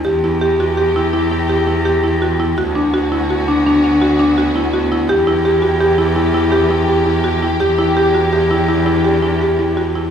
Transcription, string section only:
0.04 2.55 E3 medium
0.04 7.56 B3 medium
0.04 2.55 G4 medium
2.57 5.06 D3 medium
2.57 5.06 F#4 medium
5.09 7.58 E3 medium
5.09 10.11 G4 medium
7.61 10.11 E3 medium
7.61 10.11 D4 medium

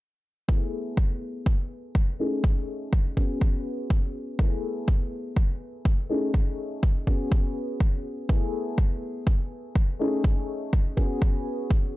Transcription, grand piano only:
0.48 2.15 A3 medium
0.48 2.15 B3 medium
0.48 2.15 E4 medium
0.48 2.15 G#4 loud
2.19 3.12 A3 medium
2.19 3.13 C#4 medium
2.19 3.13 D#4 medium
2.19 3.13 G#4 medium
3.17 4.34 B3 medium
3.17 4.35 C#4 medium
3.17 4.35 F#4 medium
3.17 4.35 G#4 medium
4.39 6.05 A3 medium
4.39 6.05 B3 medium
4.39 6.06 E4 medium
4.39 6.06 G#4 medium
6.09 7.03 A3 medium
6.09 7.03 C#4 medium
6.09 7.03 D#4 medium
6.09 7.03 G#4 medium
7.07 8.25 B3 medium
7.07 8.25 C#4 medium
7.07 8.25 F#4 medium
7.07 8.25 G#4 loud
8.29 9.95 A3 medium
8.29 9.95 B3 medium
8.29 9.96 E4 medium
8.29 9.96 G#4 loud
9.99 10.93 A3 medium
9.99 10.93 C#4 medium
9.99 10.93 D#4 medium
9.99 10.94 G#4 medium
10.97 11.97 B3 medium
10.97 11.97 C#4 medium
10.97 11.97 F#4 medium
10.97 11.97 G#4 loud

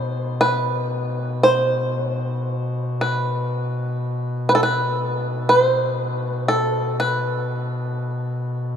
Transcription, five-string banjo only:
0.00 0.40 C5 medium
0.41 1.41 B4 medium
1.43 2.01 C5 medium
2.01 2.16 C#5 medium
2.16 2.33 C5 medium
2.33 2.49 C#5 medium
2.49 3.01 C5 medium
3.01 3.95 B4 medium
4.49 4.54 B4 medium
4.55 4.62 A4 medium
4.63 5.49 B4 medium
5.49 6.48 C5 medium
6.48 6.99 A4 medium
7.00 8.77 B4 medium

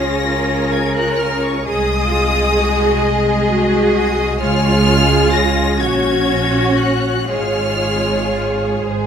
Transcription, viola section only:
0.00 1.61 C#4 medium
0.00 1.61 F4 medium
1.64 4.35 G#3 medium
1.64 3.48 G#4 medium
3.50 4.39 F#4 medium
4.40 5.78 G#3 medium
4.40 5.78 F4 medium
5.80 7.29 C#4 medium
5.80 7.26 F#4 medium
7.30 8.83 G#3 medium
7.30 8.83 F4 medium
8.85 9.07 G#3 medium
8.85 9.07 G#4 medium

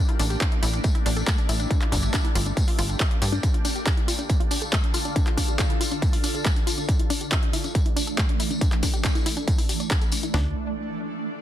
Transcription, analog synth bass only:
0.19 0.37 A1 loud
0.63 0.80 A1 medium
1.06 1.24 A1 medium
1.49 1.67 A1 medium
1.92 2.10 G1 loud
2.35 2.53 G1 medium
2.79 2.96 G1 loud
3.22 3.39 G2 loud
10.34 10.54 D2 loud

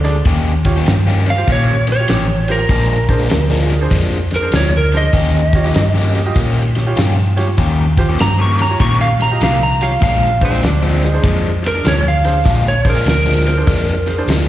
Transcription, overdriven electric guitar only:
0.16 muted overdriven electric guitar stroke soft
0.26 0.51 D#3 medium
0.26 0.52 A#3 medium
0.26 0.52 C#4 medium
0.26 0.52 G4 loud
0.76 0.93 D#3 medium
0.76 0.93 A#3 medium
0.76 0.93 C#4 medium
0.76 0.93 G4 medium
1.07 1.30 D#3 medium
1.07 1.30 A#3 medium
1.07 1.30 C#4 medium
1.07 1.30 G4 medium
1.48 1.74 D#3 medium
1.48 1.74 A#3 medium
1.48 1.74 C#4 medium
1.48 1.74 G4 medium
1.87 muted overdriven electric guitar stroke soft
2.08 2.28 D#3 medium
2.08 2.28 A#3 medium
2.08 2.27 C#4 medium
2.08 2.26 G4 medium
2.28 muted overdriven electric guitar stroke soft
2.59 muted overdriven electric guitar stroke soft
2.69 2.95 A#2 medium
2.69 2.95 F3 medium
2.69 2.96 G#3 medium
2.69 2.96 D4 loud
3.19 3.37 A#2 medium
3.19 3.37 F3 medium
3.19 3.37 G#3 medium
3.19 3.36 D4 medium
3.50 3.74 A#2 medium
3.50 3.73 F3 medium
3.50 3.73 G#3 medium
3.50 3.73 D4 medium
3.91 4.17 A#2 medium
3.91 4.17 F3 medium
3.91 4.17 G#3 medium
3.91 4.17 D4 medium
4.31 muted overdriven electric guitar stroke soft
4.53 4.73 A#2 medium
4.53 4.73 F3 medium
4.53 4.72 G#3 medium
4.53 4.71 D4 medium
4.73 muted overdriven electric guitar stroke soft
5.03 muted overdriven electric guitar stroke soft
5.13 5.40 D#3 medium
5.13 5.39 A#3 medium
5.13 5.40 C#4 medium
5.13 5.40 G4 medium
5.64 5.82 D#3 medium
5.64 5.81 A#3 medium
5.64 5.81 C#4 medium
5.64 5.81 G4 medium
5.95 6.19 D#3 medium
5.95 6.18 A#3 medium
5.95 6.18 C#4 medium
5.95 6.18 G4 medium
6.35 6.61 D#3 medium
6.35 6.62 A#3 medium
6.35 6.62 C#4 medium
6.35 6.62 G4 medium
6.76 muted overdriven electric guitar stroke soft
6.96 7.16 D#3 medium
6.96 7.17 A#3 medium
6.96 7.16 C#4 medium
6.96 7.16 G4 medium
7.17 muted overdriven electric guitar stroke soft
7.48 muted overdriven electric guitar stroke soft
7.57 7.84 D#3 medium
7.57 7.84 A#3 medium
7.57 7.84 C#4 medium
7.57 7.84 G4 medium
8.09 8.26 D#3 medium
8.09 8.26 A#3 medium
8.09 8.26 C#4 medium
8.09 8.25 G4 medium
8.39 8.63 D#3 medium
8.39 8.62 A#3 medium
8.39 8.62 C#4 medium
8.39 8.62 G4 medium
8.80 9.06 D#3 medium
8.80 9.06 A#3 medium
8.80 9.06 C#4 medium
8.80 9.07 G4 medium
9.19 muted overdriven electric guitar stroke soft
9.41 9.61 D#3 medium
9.41 9.60 A#3 medium
9.41 9.59 C#4 medium
9.41 9.59 G4 medium
9.60 muted overdriven electric guitar stroke soft
9.91 muted overdriven electric guitar stroke soft
10.01 10.27 A#2 medium
10.01 10.28 F3 medium
10.01 10.28 G#3 medium
10.01 10.28 D4 medium
10.50 10.69 A#2 medium
10.50 10.69 F3 medium
10.50 10.68 G#3 medium
10.50 10.68 D4 medium
10.82 11.06 A#2 medium
10.82 11.06 F3 medium
10.82 11.06 G#3 medium
10.82 11.06 D4 medium
11.23 11.49 A#2 medium
11.23 11.50 F3 medium
11.23 11.50 G#3 medium
11.23 11.50 D4 medium
11.62 muted overdriven electric guitar stroke soft
11.84 12.05 A#2 medium
11.84 12.04 F3 medium
11.84 12.04 G#3 medium
11.84 12.03 D4 medium
12.04 muted overdriven electric guitar stroke soft
12.33 muted overdriven electric guitar stroke soft
12.44 12.71 A#2 medium
12.44 12.71 F3 medium
12.44 12.72 G#3 medium
12.44 12.72 D4 medium
12.94 13.13 A#2 medium
12.94 13.13 F3 medium
12.94 13.12 G#3 medium
12.94 13.12 D4 medium
13.26 13.50 A#2 medium
13.26 13.50 F3 medium
13.26 13.50 G#3 medium
13.26 13.49 D4 medium
13.67 13.93 A#2 medium
13.67 13.93 F3 medium
13.67 13.94 G#3 medium
13.67 13.94 D4 medium
14.07 muted overdriven electric guitar stroke soft
14.28 14.48 A#2 medium
14.28 14.48 F3 medium
14.28 14.47 G#3 medium
14.28 14.47 D4 medium

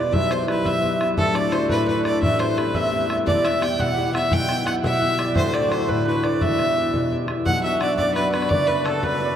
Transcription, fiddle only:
0.00 0.15 D5 medium
0.13 0.33 E5 loud
0.32 0.48 C5 medium
0.49 0.68 B4 medium
0.66 1.05 E5 loud
1.18 1.36 A4 loud
1.35 1.54 D5 loud
1.52 1.69 C5 medium
1.70 1.86 B4 loud
1.88 2.04 B4 medium
2.05 2.21 D5 medium
2.22 2.41 E5 loud
2.39 2.59 C5 medium
2.57 2.77 B4 medium
2.75 3.14 E5 loud
3.26 3.47 D5 loud
3.45 3.64 E5 loud
3.63 3.82 G5 loud
3.80 4.15 F#5 loud
4.15 4.34 E5 loud
4.32 4.66 G5 loud
4.67 4.75 F#5 loud
4.84 5.33 E5 loud
5.37 5.56 C5 loud
5.54 5.73 D5 medium
5.72 5.90 C5 medium
5.89 6.06 B4 loud
6.07 6.26 B4 medium
6.24 6.44 D5 medium
6.42 7.12 E5 loud
7.46 7.62 F#5 loud
7.64 7.77 E5 loud
7.77 7.97 D5 loud
7.77 7.81 E5 medium
7.97 8.14 D5 loud
8.15 8.32 B4 loud
8.32 8.51 B4 medium
8.49 8.69 D5 loud
8.67 8.87 B4 loud
8.85 9.05 A4 medium
9.03 9.36 B4 loud

